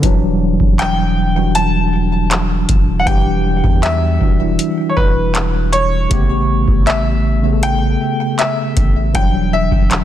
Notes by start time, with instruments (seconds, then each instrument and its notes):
0.02 808-style bass E1, tine electric piano E3 F#3 G3 D4, kick, closed hi-hat
0.60 808-style bass E1, kick
0.79 grand piano G5, clap, closed hi-hat
1.35 tine electric piano E3 G3 D4 F#4
1.55 grand piano A5, closed hi-hat
2.31 clap, closed hi-hat
2.69 808-style bass E1, kick, closed hi-hat
3.00 grand piano F#5
3.06 808-style bass E1, tine electric piano E3 G3 D4 G4, grand piano G5, kick, closed hi-hat
3.64 808-style bass E2, kick
3.83 grand piano E5, clap, closed hi-hat
4.20 808-style bass E1, tine electric piano E3 G3 D4 F#4, kick
4.39 tine electric piano E3 G3 D4 E4
4.59 closed hi-hat
4.89 grand piano C#5
4.97 808-style bass E1, grand piano B4, kick
5.35 clap, closed hi-hat
5.72 grand piano C#5, closed hi-hat
6.09 808-style bass A1, tine electric piano C#3 A3 B3 G4, kick, closed hi-hat
6.68 808-style bass A1, kick
6.87 grand piano E5, clap, closed hi-hat
7.42 tine electric piano C#3 A3 B3 G#4
7.53 tine electric piano A4
7.63 grand piano G5, closed hi-hat
8.39 grand piano E5, clap, closed hi-hat
8.77 808-style bass A1, kick, closed hi-hat
9.13 808-style bass E1, tine electric piano E3 F#3 G3 D4, grand piano G5, kick, closed hi-hat
9.53 grand piano E5
9.72 808-style bass E1, kick
9.91 clap, closed hi-hat